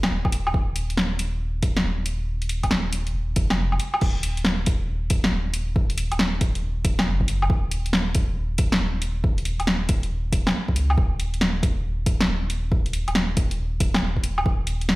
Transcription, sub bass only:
0.11 0.53 D#1 medium
0.54 1.84 D#1 loud
1.84 2.62 D#1 loud
2.64 3.14 D#1 medium
3.14 3.35 D#1 medium
3.36 3.79 F1 medium
4.02 5.31 D#1 loud
5.32 6.10 D#1 loud
6.12 6.84 D#1 medium
6.85 7.08 D#1 loud
7.06 7.49 F#1 medium
7.50 8.79 D#1 loud
8.80 9.58 D#1 loud
9.60 10.31 D#1 medium
10.33 10.53 D#1 loud
10.68 10.97 C#2 medium
10.98 12.27 D#1 medium
12.28 13.06 D#1 loud
13.07 13.79 D#1 medium
13.80 14.01 D#1 loud
14.02 14.44 D#1 loud
14.46 14.96 D#1 loud

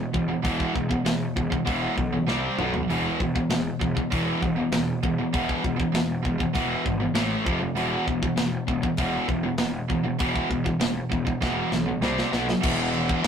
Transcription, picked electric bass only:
0.14 0.33 E1 medium
0.44 0.63 E1 medium
0.75 0.94 E1 medium
1.05 1.24 E1 medium
1.36 1.55 E1 medium
1.67 1.86 E1 medium
1.97 2.16 B1 medium
2.28 2.47 C2 medium
2.58 2.77 B1 medium
2.89 3.08 E1 medium
3.20 3.39 E1 medium
3.49 3.69 E1 medium
3.81 4.00 E1 medium
4.12 4.31 E1 medium
4.42 4.61 E1 medium
4.72 4.91 E1 medium
5.03 5.22 E1 medium
5.34 5.53 E1 medium
5.64 5.83 E1 medium
5.94 6.13 E1 medium
6.25 6.44 E1 medium
6.55 6.74 E1 medium
6.85 7.04 G#1 medium
7.15 7.34 A1 medium
7.46 7.65 F1 medium
7.75 7.95 E1 medium
8.07 8.26 E1 medium
8.37 8.56 E1 medium
8.68 8.87 E1 medium
8.98 9.17 E1 loud
9.28 9.47 E1 medium
9.58 9.78 E1 medium
9.90 10.09 E1 medium
10.20 10.39 E1 medium
10.50 10.69 E1 medium
10.80 10.99 E1 medium
11.12 11.31 E1 medium
11.42 11.61 E1 medium
11.72 11.91 B1 medium
12.01 12.20 C2 medium
12.32 12.52 B1 medium
12.63 13.12 E1 medium

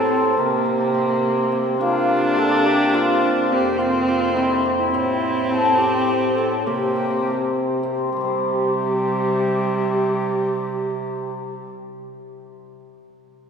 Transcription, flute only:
0.00 0.41 A4 medium
0.39 0.67 A#4 medium
1.80 2.40 F4 medium
2.38 2.67 A4 medium
2.66 2.96 G4 loud
2.94 3.49 F4 medium
3.50 3.80 G4 medium
3.79 4.05 F4 medium
4.06 4.36 F4 medium
4.34 4.76 E4 medium
4.77 5.80 E4 medium
5.78 6.37 G4 medium
6.35 6.64 A4 medium
6.65 7.79 G4 medium
8.12 11.70 G4 medium

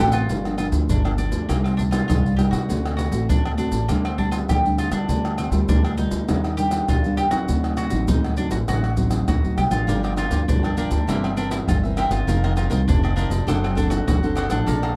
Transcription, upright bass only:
0.00 0.26 A1 medium
0.29 0.68 G1 medium
0.72 0.86 D2 medium
0.90 1.28 G1 medium
1.32 1.46 D2 medium
1.49 2.00 C2 medium
2.09 2.47 C2 medium
2.52 2.66 C3 medium
2.69 3.07 D2 medium
3.12 3.25 A1 medium
3.29 3.67 D2 loud
3.71 3.85 A1 medium
3.89 4.40 D2 medium
4.49 4.87 D2 medium
4.91 5.05 D3 medium
5.08 5.47 D2 medium
5.51 5.65 D2 medium
5.69 6.07 D2 loud
6.11 6.25 D2 medium
6.29 6.80 D#2 medium
6.89 7.27 D#2 medium
7.31 7.45 D#2 medium
7.49 7.87 D2 medium
7.92 8.05 A1 medium
8.09 8.47 D2 loud
8.52 8.65 A1 medium
8.68 9.27 A1 medium
9.28 9.42 D#2 medium
9.44 9.56 D2 medium
9.57 9.70 C2 medium
9.70 9.85 A1 medium
9.87 10.26 G1 medium
10.30 10.44 D2 medium
10.48 10.86 G1 medium
10.91 11.05 D2 medium
11.08 11.59 G1 medium
11.68 12.06 G1 medium
12.11 12.24 G1 medium
12.28 12.66 F1 medium
12.70 12.84 C2 medium
12.88 13.26 F1 loud
13.30 13.44 F1 medium
13.47 13.98 F#1 medium
14.07 14.46 F#1 medium
14.50 14.64 A1 medium
14.67 14.96 A#1 medium

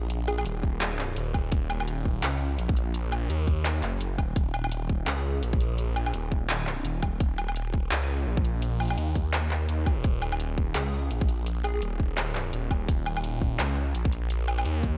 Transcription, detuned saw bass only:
0.00 0.45 A#1 medium
0.46 1.15 D#1 loud
1.17 1.51 D#1 loud
1.52 2.22 D#1 loud
2.23 2.58 C#2 loud
2.59 3.29 A#1 loud
3.30 3.82 D#2 medium
3.83 4.17 F#1 medium
4.18 4.35 D#1 loud
4.36 5.06 D#1 loud
5.07 5.42 C#2 loud
5.43 6.13 A#1 loud
6.14 6.84 D#1 medium
6.85 7.19 D#1 loud
7.20 7.90 D#1 loud
7.91 8.26 C#2 loud
8.27 8.97 A#1 loud
8.98 9.68 D#2 loud
9.69 10.03 D#2 loud
10.04 10.74 D#1 loud
10.75 11.10 C#2 loud
11.11 11.81 A#1 loud
11.82 12.52 D#1 loud
12.53 12.87 D#1 medium
12.88 13.58 D#1 loud
13.60 13.94 C#2 loud
13.95 14.65 A#1 medium
14.66 14.97 D#2 loud

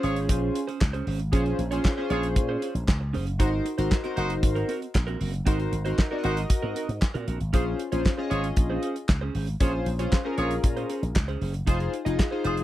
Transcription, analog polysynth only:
0.00 0.60 C#4 loud
0.00 0.60 F4 medium
0.00 0.60 G#4 medium
0.00 0.60 C5 loud
1.32 1.59 C#4 medium
1.32 1.59 F4 medium
1.32 1.59 G#4 medium
1.32 1.59 C5 loud
1.72 1.89 C#4 medium
1.72 1.89 F4 medium
1.72 1.89 G#4 medium
1.72 1.90 C5 loud
1.97 2.67 C#4 medium
1.97 2.67 F4 medium
1.97 2.67 G#4 medium
1.97 2.67 C5 loud
3.39 3.66 D#4 loud
3.39 3.66 F#4 medium
3.39 3.66 A#4 medium
3.39 3.66 C5 loud
3.78 3.96 D#4 medium
3.78 3.96 F#4 medium
3.78 3.96 A#4 medium
3.78 3.96 C5 loud
4.04 4.74 D#4 medium
4.04 4.74 F#4 medium
4.04 4.74 A#4 medium
4.04 4.74 C5 loud
5.47 5.73 D#4 medium
5.47 5.73 F#4 medium
5.47 5.73 A#4 medium
5.47 5.73 C5 loud
5.85 6.03 D#4 medium
5.85 6.03 F#4 medium
5.85 6.03 A#4 medium
5.85 6.03 C5 loud
6.11 6.81 D#4 medium
6.11 6.81 F#4 medium
6.11 6.81 A#4 medium
6.11 6.18 D5 medium
6.18 6.84 D#5 medium
7.53 7.79 C#4 medium
7.53 7.80 F4 medium
7.53 7.80 G#4 medium
7.53 7.80 C5 loud
7.92 8.10 C#4 medium
7.92 8.10 F4 medium
7.92 8.10 G#4 medium
7.92 8.10 C5 loud
8.18 8.88 C#4 medium
8.18 8.88 F4 medium
8.18 8.88 G#4 medium
8.18 8.88 D#5 loud
9.60 9.86 C#4 medium
9.60 9.87 F4 medium
9.60 9.87 G#4 medium
9.60 9.87 C5 loud
9.99 10.16 C#4 medium
9.99 10.17 F4 medium
9.99 10.17 G#4 medium
9.99 10.17 C5 loud
10.25 10.94 C#4 loud
10.25 10.95 F4 medium
10.25 10.95 G#4 medium
10.25 10.95 A#4 loud
11.67 11.93 D#4 medium
11.67 11.93 F4 medium
11.67 11.94 G#4 medium
11.67 11.94 C5 loud
12.05 12.23 D#4 medium
12.05 12.23 F4 medium
12.05 12.24 G#4 medium
12.05 12.24 D#5 medium
12.32 12.64 D#4 loud
12.32 12.64 F4 medium
12.32 12.64 G#4 medium
12.32 12.64 C5 loud

